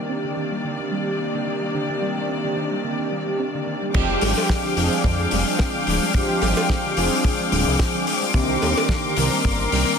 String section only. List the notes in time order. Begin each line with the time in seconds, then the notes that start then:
Already playing: C3 D#3 A#3 D5
3.95 G#3 F5 G5 D6
8.35 A#4 C6